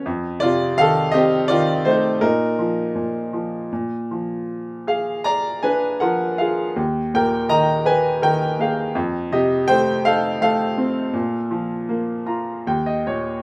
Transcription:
<<
  \new Staff \with { instrumentName = "Grand piano" } { \time 3/4 \key bes \phrygian \tempo 4 = 82 << { r8 <f' d''>8 <a' f''>8 <g' ees''>8 <f' d''>8 <ees' c''>8 | <ees' bes'>2 r4 | r8 <aes' f''>8 <d'' bes''>8 <ces'' aes''>8 <bes' ges''>8 <aes' f''>8 | r8 <bes' g''>8 <ees'' bes''>8 <ces'' aes''>8 <bes' g''>8 <aes' f''>8 |
r8 <g' ees''>8 <c'' g''>8 <a' f''>8 <a' f''>4~ | <a' f''>2 r4 | } \\ { r2. | r2. | r2. | r2. |
r2. | r4. bes''8 g''16 ees''16 des''8 | } >> }
  \new Staff \with { instrumentName = "Grand piano" } { \clef bass \time 3/4 \key bes \phrygian f,8 c8 ees8 c'8 ees8 a8 | bes,8 f8 bes,8 f8 bes,8 f8~ | f4. d'8 f8 f'8 | ees,8 bes,8 ees4 ees8 bes8 |
f,8 c8 a8 ees'8 a8 c'8 | bes,8 f8 bes8 f'8 ees,8 bes,8 | }
>>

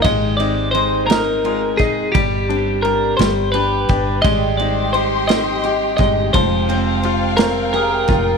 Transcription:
<<
  \new Staff \with { instrumentName = "String section" } { \time 6/8 \key aes \lydian \tempo 4. = 57 r2. | r2. | <g' g'' c'''>2. | <f'' g''>2. | }
  \new Staff \with { instrumentName = "Clean electric guitar" } { \time 6/8 \key aes \lydian ees''8 d''8 c''8 bes'4 aes'8 | g'4 bes'8 c''8 b'4 | ees''8 d''8 c''8 ees''4 ees''8 | c''4. bes'8 bes'4 | }
  \new Staff \with { instrumentName = "Steel-string acoustic guitar" } { \time 6/8 \key aes \lydian g'8 c'8 ees'8 c'8 f'16 r16 ees'8 | <g g'>8 c'8 d'8 r8 g'8 d'8 | <g g'>8 c'8 ees'8 c'8 g'8 ees'8 | <aes g'>8 c'8 f'8 c'8 g'8 f'8 | }
  \new Staff \with { instrumentName = "Grand piano" } { \time 6/8 \key aes \lydian aes8 ees'8 aes8 ees'8 aes8 ees'8 | g8 d'8 g8 g8 d'8 g'8 | aes8 ees'8 g'8 ees'8 g'8 aes8 | f8 c'8 f'8 c'8 aes'8 f'8 | }
  \new Staff \with { instrumentName = "Fretless electric bass" } { \clef bass \time 6/8 \key aes \lydian aes,,2~ aes,,8 f,,8 | g,,4. g,,4 g,,8 | aes,,2~ aes,,8 g,,8 | f,,2~ f,,8 f,,8 | }
  \new DrumStaff \with { instrumentName = "Drums" } \drummode { \time 6/8 <bd cymr>8 cymr8 cymr8 <cymr sn>8 cymr8 <bd cymr>8 | <bd cymr>8 cymr8 cymr8 <cymr sn>8 cymr8 <bd cymr>8 | <bd cymr>8 cymr8 cymr8 <cymr sn>8 cymr8 <bd cymr>8 | <bd cymr>8 cymr8 cymr8 <cymr sn>8 cymr8 <bd cymr>8 | }
>>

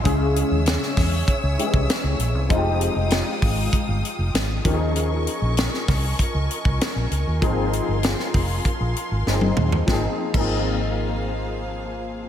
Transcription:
<<
  \new Staff \with { instrumentName = "String section" } { \time 4/4 \key aes \major \tempo 4 = 98 << { <fes'' fes'''>1 | <f'' ees'''>2.~ <f'' ees'''>8 <ees'' des'''>8~ | <ees'' des'''>1 | <f'' c'''>1 |
<bes aes' c'' f''>1 | } \\ { <des'' aes''>1 | <aes g''>2.~ <aes g''>8 <bes' aes''>8~ | <bes' aes''>1~ | <bes' aes''>1 |
r1 | } >> }
  \new Staff \with { instrumentName = "Grand piano" } { \time 4/4 \key aes \major <des aes des' fes' aes'>2~ <des aes des' fes' aes'>8 <fes aes des' fes' g' aes'>4. | <f aes c' ees' f' g'>2.~ <f aes c' ees' f' g'>8 <f bes des' ees' g' aes'>8~ | <f bes des' ees' g' aes'>2.~ <f bes des' ees' g' aes'>8 r8 | <f bes c' ees' aes'>2. <f bes c' ees' aes'>4 |
<f bes c' ees' aes'>16 r8 <f bes c' ees' aes'>2.~ <f bes c' ees' aes'>16 | }
  \new Staff \with { instrumentName = "Fingered electric bass" } { \clef bass \time 4/4 \key aes \major des,8. ees,8 r16 fes,8 r16 des,16 r16 c,16 r16 des,16 bes,,16 c,16 | f,,8. f,,8 r16 aes,,8 r16 g,,16 r16 f,,16 aes,,8 ees,8~ | ees,8. bes,,8 r16 c,8 r16 des,16 r16 c,16 r16 bes,,16 des,16 ees,16 | aes,,8. g,,8 r16 f,,8 r16 bes,,16 r16 aes,,16 g,,8 ees,8 |
aes,,16 r8 aes,,2.~ aes,,16 | }
  \new DrumStaff \with { instrumentName = "Drums" } \drummode { \time 4/4 <hh bd>8 hh8 <hh sn>16 sn16 <hho bd sn>8 <hh bd>8 hh16 bd16 <hh sn>8 hh8 | <hh bd>8 hh8 <hh sn>8 <hho bd>8 <hh bd>8 hh8 <hh sn>8 <hh bd>8 | hh8 hh8 <hh sn>16 sn16 <hho bd sn>8 <hh bd>8 hh16 bd16 <hh sn>8 hh8 | <hh bd>8 hh8 <hh sn>16 sn16 <hho bd>8 <hh bd>8 hh8 sn16 tommh16 toml16 tomfh16 |
<bd sn>8. <cymc bd>16 r4 r4 r4 | }
>>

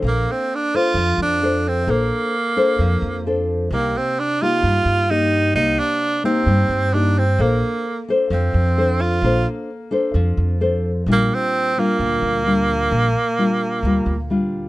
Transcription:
<<
  \new Staff \with { instrumentName = "Nylon-string guitar" } { \time 4/4 \key bes \major \tempo 4 = 130 << { <d' a' c''>4 r8 <d' a' c''>4. <d' a' c''>4 | <d' a' c''>4 r8 <d' a' c''>4. <d' a' c''>4 | <bes ees' g'>4 r8 <bes ees' g'>4. <bes ees' g'>4 | <bes g'>4. <bes ees' g'>4. <bes ees' g'>8 r8 |
<d' a' c''>4 r8 <d' a' c''>4. <d' a' c''>4 | <d' a' c''>4 r8 <d' a' c''>4. <d' a' c''>8 r8 | <g d' f'>4. <g d' f'>4. <g d' f'>4~ | <g d' f'>8 r8 <g d' f'>4 <g d' f'>8 r8 <g d' f'>4 | } \\ { bes2 f2 | bes2 f2 | c2 g2 | c2 g2 |
bes2 f2 | bes2 f2 | bes,2 bes,2 | bes,2 bes,2 | } >> }
  \new Staff \with { instrumentName = "Tenor saxophone" } { \time 4/4 \key bes \major bes8 c'8 d'8 f'4 d'4 c'8 | bes2.~ bes8 r8 | bes8 c'8 d'8 f'4. ees'4 | ees'8 d'4 c'4. d'8 c'8 |
bes4. r8 c'4. f'8~ | f'8 r2. r8 | bes8 c'4 bes2~ bes8~ | bes2. r4 | }
  \new Staff \with { instrumentName = "Upright bass" } { \clef bass \time 4/4 \key bes \major bes,,8 r4. f,8 f,4. | bes,,8 r4. f,8 f,4. | c,8 r4. g,8 g,4. | c,8 r4. g,8 g,4. |
bes,,8 r4. f,8 f,4. | bes,,8 r4. f,8 f,4. | bes,,8 r4. d,8 d,4. | bes,,8 r4. d,8 d,4. | }
>>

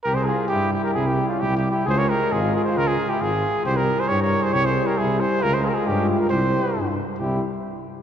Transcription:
<<
  \new Staff \with { instrumentName = "Trumpet" } { \time 2/4 \tempo 4 = 135 bes'16 c''16 aes'8 g'8 g'16 bes'16 | aes'16 g'8 f'16 \tuplet 3/2 { g'8 g'8 g'8 } | c''16 des''16 bes'8 aes'8 aes'16 c''16 | bes'16 aes'8 g'16 aes'4 |
c''16 bes'8 c''16 des''16 des''8 c''16 | des''16 c''8 bes'16 aes'8 c''8 | bes'16 c''16 aes'32 bes'32 aes'16 g'8 g'16 bes'16 | c''4. r8 |
g'8 r4. | }
  \new Staff \with { instrumentName = "Flugelhorn" } { \time 2/4 g'16 aes'16 f'8 e'8 e'16 g'16 | e'16 e'8 des'16 \tuplet 3/2 { e'8 e'8 e'8 } | aes'16 bes'16 g'8 f'8 f'16 aes'16 | f'16 f'8 e'16 f'4 |
g'16 g'8 aes'16 g'16 bes'8 aes'16 | g'16 aes'8 g'16 e'8 aes'8 | f'16 aes'16 f'32 g'32 f'16 des'8 e'16 g'16 | g'4. r8 |
e'8 r4. | }
  \new Staff \with { instrumentName = "Euphonium" } { \time 2/4 e'2~ | e'2 | f'2~ | f'4. r8 |
e'2~ | e'2 | f'2 | e'4. r8 |
e'8 r4. | }
  \new Staff \with { instrumentName = "Euphonium" } { \clef bass \time 2/4 g2~ | g2 | aes2~ | aes4. r8 |
g2~ | g2 | aes2 | g4. r8 |
g8 r4. | }
  \new Staff \with { instrumentName = "Tuba" } { \clef bass \time 2/4 c,4 g,4 | c,4 c,4 | des,4 aes,,4 | des,4 aes,,4 |
c,4 g,4 | c,4 c,4 | des,4 g,4 | c,4 g,4 |
c,8 r4. | }
>>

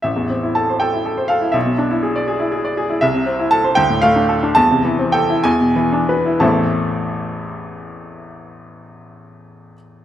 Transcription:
\new Staff \with { instrumentName = "Upright piano" } { \time 6/8 \key a \minor \tempo 4. = 72 << { e''4 a''8 g''4 f''8 | e''2~ e''8 r8 | e''4 a''8 g''8 f''4 | a''4 g''8 gis''4. |
<a,, e, e a c' e' a''>2.~ | <a,, e, e a c' e' a''>2. | } \\ { a,,16 e,16 c'16 e'16 a'16 c''16 a'16 e'16 a'16 c''16 a'16 e'16 | b,,16 b,16 d'16 e'16 gis'16 d''16 gis'16 e'16 gis'16 d''16 gis'16 e'16 | c,16 c16 c'16 e'16 a'16 c''16 d,16 a,16 a16 d'16 a'16 d'16 | e,16 c16 e16 c'16 a'16 e'16 e,16 b,16 e16 d'16 b'16 e'16 |
r2. | r2. | } >> }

